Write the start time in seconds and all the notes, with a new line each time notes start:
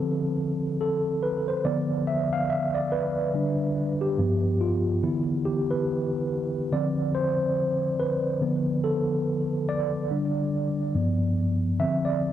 Already playing: D3 F3 C4 A4
0.81 A4
1.23 B4
1.48 C5
1.64 D3 F3 B3 D5
2.07 E5
2.33 F5
2.50 E5
2.75 D5
2.92 B4
3.34 D3 G3 D4
4.01 G4
4.18 G2 F3 B3
4.61 F4
5.03 D3 E3 B3 E4
5.45 G4
5.71 B4
6.72 D3 F3 C4 D5
7.15 C5
7.99 B4
8.41 D3 F3 B3
8.84 A4
9.69 D5
10.10 D3 G3 D4
10.94 G2 F3 B3
11.79 D3 F3 C4 E5
12.05 D5